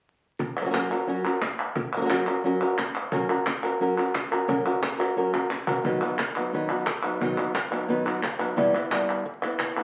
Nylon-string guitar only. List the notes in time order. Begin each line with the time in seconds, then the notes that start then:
0.39 muted nylon-string guitar stroke
0.61 F#3 C#4 F#4 A#4
0.66 F#3 C#4 F#4 A#4
0.70 F#3 C#4 F#4 A#4
0.74 F#3 C#4 F#4 A#4
0.91 C#4 F#4 A#4
1.07 F#3 C#4 F#4 A#4
1.24 C#4 F#4 A#4
1.41 muted nylon-string guitar stroke
1.76 muted nylon-string guitar stroke
1.96 F#3 C#4 F#4 A#4
2.01 F#3 C#4 F#4 A#4
2.05 F#3 C#4 F#4 A#4
2.10 F#3 C#4 F#4 A#4
2.27 C#4 F#4 A#4
2.44 F#3 C#4 F#4 A#4
2.61 C#4 F#4 A#4
2.78 muted nylon-string guitar stroke
3.12 F#3 C#4 F#4 A#4
3.29 C#4 F#4 A#4
3.46 muted nylon-string guitar stroke
3.63 C#4 F#4 A#4
3.80 F#3 C#4 F#4 A#4
3.97 C#4 F#4 A#4
4.15 muted nylon-string guitar stroke
4.31 C#4 F#4 A#4
4.48 F#3 C#4 F#4 A#4
4.66 C#4 F#4 A#4
4.82 muted nylon-string guitar stroke
4.98 C#4 F#4 A#4
5.16 F#3 C#4 F#4 A#4
5.33 C#4 F#4 A#4
5.50 muted nylon-string guitar stroke
5.67 C#4 F#4 A#4
5.84 B2 D#3 F#3 B3 D#4 B4
6.02 F#3 B3 D#4 B4
6.19 muted nylon-string guitar stroke
6.36 F#3 B3 D#4 B4
6.53 B2 D#3 F#3 B3 D#4 B4
6.70 F#3 B3 D#4 B4
6.87 muted nylon-string guitar stroke
7.03 F#3 B3 D#4 B4
7.21 B2 D#3 F#3 B3 D#4 B4
7.37 F#3 B3 D#4 B4
7.54 muted nylon-string guitar stroke
7.71 F#3 B3 D#4 B4
7.88 B2 D#3 F#3 B3 D#4 B4
8.05 F#3 B3 D#4 B4
8.22 muted nylon-string guitar stroke
8.39 F#3 B3 D#4 B4
8.56 E3 G3 B3 E4 B4
8.74 B3 E4 B4
8.90 G3 B3 E4 B4
9.25 muted nylon-string guitar stroke
9.42 B3 E4 B4
9.77 B3 E4 B4